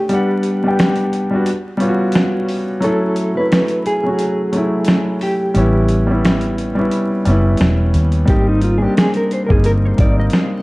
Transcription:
Already playing: upright piano A3 C#4 D4 G#4 G#5, clean electric guitar G4
0.09 upright piano G3 B3 D4, closed hi-hat
0.14 upright piano F#5
0.43 closed hi-hat
0.64 upright piano G3 B3 D4
0.68 upright piano G4
0.79 snare, closed hi-hat
0.96 closed hi-hat
1.13 closed hi-hat
1.31 upright piano G3 B3 D4
1.35 upright piano F#4
1.46 closed hi-hat
1.77 upright piano G3 B3 C#4, closed hi-hat
1.81 upright piano F4
1.88 upright piano F#4
2.12 snare, closed hi-hat
2.49 open hi-hat
2.80 upright piano F#3 A3 C#4, clean electric guitar A4, closed hi-hat
2.85 upright piano E4
3.16 closed hi-hat
3.35 upright piano F#3 A3 C#4, clean electric guitar B4
3.40 upright piano E4
3.52 snare, closed hi-hat
3.68 closed hi-hat
3.86 clean electric guitar G#4, closed hi-hat
4.03 upright piano F#3 A3 C#4
4.08 upright piano F#4
4.19 closed hi-hat
4.52 upright piano F#3 A3 C#4, closed hi-hat
4.57 upright piano E4
4.85 snare, closed hi-hat
5.21 clean electric guitar G4, open hi-hat
5.54 fingered electric bass A1, upright piano G3 B3 C#4, closed hi-hat
5.58 upright piano E4
5.89 closed hi-hat
6.07 upright piano G3 B3 C#4
6.11 upright piano E4
6.25 snare, closed hi-hat
6.41 closed hi-hat
6.58 closed hi-hat
6.75 upright piano G3 B3 C#4
6.79 upright piano E4
6.91 closed hi-hat
7.25 fingered electric bass F#1, upright piano G3 B3 C#4, closed hi-hat
7.30 upright piano E4
7.57 fingered electric bass E1, snare, closed hi-hat
7.94 fingered electric bass D#2, closed hi-hat
8.12 closed hi-hat
8.25 fingered electric bass G#1, upright piano G3 A#3 C4, kick, closed hi-hat
8.30 upright piano D#4, clean electric guitar G4
8.49 clean electric guitar D#4
8.62 clean electric guitar F4, closed hi-hat
8.78 upright piano G3 A#3 C4, clean electric guitar G#4
8.82 upright piano D4, clean electric guitar G4
8.97 clean electric guitar G#4, snare, closed hi-hat
9.14 clean electric guitar A#4, closed hi-hat
9.31 clean electric guitar C5, closed hi-hat
9.46 upright piano G3 A#3, clean electric guitar A#4, kick
9.51 fingered electric bass G1, upright piano C4 D#4, clean electric guitar G#4
9.64 clean electric guitar A#4, closed hi-hat
9.85 clean electric guitar C5
9.97 fingered electric bass G#1, upright piano G3 A#3 C4, clean electric guitar D5, kick, closed hi-hat
10.02 upright piano D#4
10.20 clean electric guitar D#5
10.30 snare, closed hi-hat
10.34 clean electric guitar F5
10.53 clean electric guitar D#5

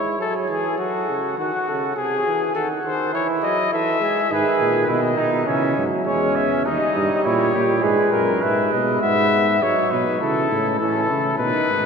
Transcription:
Already playing: trombone G#3, flugelhorn E4, trumpet C#5
0.19 trombone F#3, flugelhorn G#4, trumpet A4
0.49 trombone E3, trumpet G#4
0.78 trombone F#3, trumpet F#4, flugelhorn A4
1.08 trombone C#3
1.38 trombone D#3, trumpet F#4, flugelhorn F#4
1.68 trombone C#3, flugelhorn A4
1.96 trombone C3, trumpet G#4, flugelhorn G#4
2.26 trombone E3
2.55 trombone D#3, flugelhorn F#4, trumpet A4
2.84 trombone D#3, trumpet C5
3.13 trombone E3, flugelhorn E4, trumpet C#5
3.43 trombone F#3, trumpet D#5
3.72 trombone E3, flugelhorn A4, trumpet E5
4.00 trombone G#3, flugelhorn G#4
4.30 tuba G#2, trombone D#3, flugelhorn G#4, trumpet B4
4.60 tuba A#2
4.87 tuba B2, flugelhorn E4, trumpet D#5
5.17 tuba B2, flugelhorn D#4
5.46 tuba C#3, trombone E3, flugelhorn C#4, trumpet E5
5.77 tuba G#2, trombone F#3
6.06 tuba E2, trombone G#3, flugelhorn C#4, trumpet C#5
6.36 trumpet E5
6.65 tuba D#2, trombone G3, flugelhorn D#4, trumpet D#5
6.96 tuba G2
7.24 tuba A#2, flugelhorn E4, trumpet C#5
7.54 tuba A#2, flugelhorn G4
7.82 tuba G#2, trombone G#3, flugelhorn G#4, trumpet B4
8.12 tuba F#2, flugelhorn A#4
8.42 tuba G#2, trombone G#3, flugelhorn B4, trumpet E5
8.72 tuba B2, trumpet D#5
9.01 tuba G#2, trombone G#3, flugelhorn B3, trumpet E5
9.61 tuba G#2, trombone F#3, flugelhorn D#4, trumpet C#5
9.91 tuba B2, trumpet B4
10.21 tuba C#3, trombone E3, flugelhorn E4, trumpet A4
10.51 tuba A2, trombone C#3
10.79 tuba A2, trombone E3, flugelhorn C#4, trumpet A4
11.09 tuba C#3, flugelhorn E4
11.37 tuba B2, trombone D#3, flugelhorn D#4, trumpet B4
11.68 tuba G#2

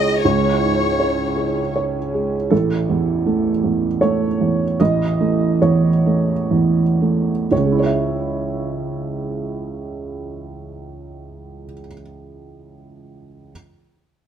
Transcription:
Already playing: felt piano C#2 G#3 G#4 C#5, ambient pad E4 G#4 C#5, violin section D#5
0.25 felt piano C#2, violin section C#5
0.63 felt piano G#2
1.00 felt piano C#5
1.37 felt piano G#4
1.76 felt piano C#5
2.14 felt piano G#3
2.50 felt piano A1 A4
2.90 felt piano E2
3.26 felt piano A3
3.64 felt piano E2
4.01 felt piano A3 C#5
4.41 felt piano E2
4.80 felt piano A1 D#5
5.20 felt piano A3
5.62 felt piano E2 C#5
6.06 felt piano A3
6.51 felt piano E2
7.01 felt piano A3
7.51 felt piano C#2 C#5
7.58 felt piano C#3
7.66 felt piano G#3
7.72 felt piano E4
7.80 felt piano C#5
7.86 felt piano E5

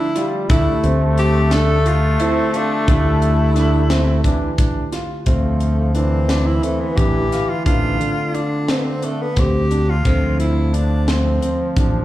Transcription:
Already playing: tine electric piano D3 F3 A3 E5, tenor saxophone E4
0.16 trombone G3, grand piano F4, closed hi-hat
0.49 fingered electric bass D2, tine electric piano D3 A3 G4 E5, trombone A3, grand piano D4, tenor saxophone E4, kick, closed hi-hat
0.83 fingered electric bass D2, grand piano C4, closed hi-hat
1.18 tenor saxophone G4, closed hi-hat
1.51 grand piano D4, tenor saxophone A4, snare, closed hi-hat
1.86 grand piano F4, tenor saxophone F4, closed hi-hat
2.20 tenor saxophone C4, grand piano E4, closed hi-hat
2.54 tenor saxophone D4, grand piano F4, closed hi-hat
2.87 fingered electric bass D2, tine electric piano D3 A3 E4 G4, grand piano D4, tenor saxophone E4, kick, closed hi-hat
3.22 closed hi-hat
3.56 grand piano D4, snare, closed hi-hat
3.90 grand piano C4, snare, closed hi-hat
4.24 trombone E3, grand piano D4, kick, closed hi-hat
4.58 grand piano D4, kick, closed hi-hat
4.92 grand piano F4, snare, closed hi-hat
5.26 fingered electric bass D2, tine electric piano D3 A3 C4 F5, trombone F3, tenor saxophone A3, grand piano C4, kick, closed hi-hat
5.60 closed hi-hat
5.95 trombone E3, tenor saxophone C4, grand piano D4, closed hi-hat
6.28 grand piano C4, tenor saxophone D4, snare, closed hi-hat
6.46 tenor saxophone E4
6.63 tenor saxophone A3, grand piano C4, closed hi-hat
6.80 tenor saxophone B3
6.97 fingered electric bass A1, grand piano D4, tenor saxophone G4, kick, closed hi-hat
7.32 grand piano F5, snare, closed hi-hat
7.49 tenor saxophone F4
7.65 fingered electric bass A1, tine electric piano D3 A3 C4 F5, grand piano D4, tenor saxophone F4, kick, closed hi-hat
8.00 trombone D3, closed hi-hat
8.34 tenor saxophone D4, grand piano F4, closed hi-hat
8.68 grand piano C4, tenor saxophone C4, snare, closed hi-hat
8.77 tenor saxophone B3
8.85 tenor saxophone C4
9.02 tenor saxophone A3, grand piano D4, closed hi-hat
9.22 tenor saxophone B3
9.36 fingered electric bass D2, grand piano C4, tenor saxophone G4, kick, snare, closed hi-hat
9.71 grand piano D4, closed hi-hat
9.90 tenor saxophone F4
10.05 fingered electric bass D2, tine electric piano D3 F3 A3 C4, trombone F3, grand piano C4, kick, closed hi-hat
10.40 tenor saxophone E4, closed hi-hat
10.73 grand piano D4, tenor saxophone D4, closed hi-hat
11.08 grand piano C4, tenor saxophone C4, snare, closed hi-hat
11.42 grand piano C4, closed hi-hat
11.76 fingered electric bass A1, grand piano D4, kick, closed hi-hat

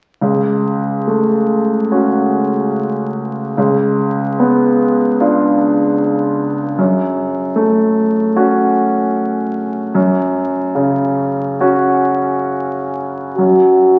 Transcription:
0.21 grand piano C#2
1.07 grand piano A3
1.91 grand piano C#4 F#4
3.57 grand piano C#2
4.39 grand piano B3
5.20 grand piano D4 F4
6.78 grand piano F#2
7.56 grand piano A3
8.36 grand piano C#4 F#4
9.94 grand piano F#2
10.75 grand piano C#3
11.60 grand piano C#4 F#4
13.37 grand piano F#2, french horn F#4

